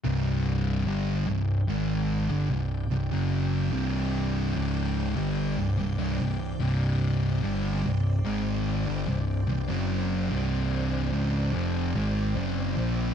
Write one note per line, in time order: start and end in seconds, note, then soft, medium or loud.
0.03 0.83 C1 medium
0.03 0.85 C2 medium
0.03 0.85 G2 medium
0.03 0.86 C3 loud
0.03 13.14 C4 medium
0.03 13.14 D5 medium
0.03 13.14 G5 medium
0.86 1.25 G1 loud
0.86 1.26 G2 medium
0.86 1.27 D3 medium
0.86 1.27 G3 loud
1.26 1.66 C1 medium
1.26 1.60 C2 medium
1.26 1.60 G2 medium
1.68 2.27 G#1 medium
1.68 2.28 G#2 loud
1.68 2.29 D#3 loud
1.68 2.29 G#3 loud
2.29 2.50 G1 medium
2.29 2.49 G2 medium
2.29 2.49 D3 loud
2.51 2.89 C1 medium
2.51 2.84 C2 medium
2.51 2.84 G2 medium
2.91 3.11 C1 medium
2.91 3.11 C2 medium
2.91 3.12 G2 medium
3.11 3.70 F#1 medium
3.11 3.71 F#2 medium
3.11 3.72 C#3 loud
3.11 3.72 F#3 loud
3.72 4.51 C1 medium
3.72 4.53 C2 medium
3.72 4.54 G2 medium
3.72 4.54 C3 medium
4.53 5.14 C#1 medium
4.53 5.15 C#2 loud
4.53 5.16 G#2 loud
4.53 5.16 C#3 loud
5.15 5.56 G1 medium
5.15 5.56 G2 medium
5.15 5.57 D3 medium
5.15 5.57 G3 medium
5.57 5.78 C1 medium
5.57 5.76 C2 medium
5.57 5.77 G2 medium
5.78 5.99 C1 medium
5.78 5.97 C2 medium
5.78 5.98 G2 medium
5.98 6.19 C1 loud
5.98 6.17 C2 medium
5.98 6.18 G2 medium
6.19 6.59 C1 medium
6.19 6.52 C2 medium
6.19 6.52 G2 medium
6.60 7.40 C1 loud
6.60 7.41 C2 loud
6.60 7.40 G2 loud
6.60 7.42 C3 loud
7.41 7.82 G1 loud
7.41 7.82 G2 medium
7.41 7.83 D3 medium
7.41 7.83 G3 medium
7.83 8.23 C1 medium
7.83 8.17 C2 medium
7.83 8.17 G2 medium
8.24 8.84 G#1 medium
8.24 8.86 G#2 medium
8.24 8.86 D#3 loud
8.24 8.86 G#3 loud
8.86 9.07 G1 loud
8.86 9.06 G2 medium
8.86 9.07 D3 loud
9.07 9.47 C1 medium
9.07 9.41 C2 medium
9.07 9.41 G2 medium
9.47 9.69 C1 medium
9.47 9.67 C2 medium
9.47 9.68 G2 medium
9.68 10.28 F#1 medium
9.68 10.29 F#2 medium
9.68 10.30 C#3 medium
9.68 10.30 F#3 loud
10.30 11.10 C1 loud
10.30 11.12 C2 medium
10.30 11.12 G2 medium
10.30 11.12 C3 loud
11.12 11.52 C#1 medium
11.12 11.52 C#2 medium
11.12 11.53 G#2 loud
11.12 11.53 C#3 loud
11.52 11.94 F1 medium
11.52 11.94 F2 medium
11.52 11.94 C3 loud
11.52 11.94 F3 loud
11.94 12.34 G#1 loud
11.94 12.35 G#2 medium
11.94 12.36 D#3 medium
11.94 12.36 G#3 loud
12.36 12.75 F#1 loud
12.36 12.76 F#2 loud
12.36 12.77 C#3 medium
12.36 12.77 F#3 medium
12.77 13.14 A#1 medium
12.77 13.14 A#2 loud
12.77 13.14 F3 loud
12.77 13.14 A#3 loud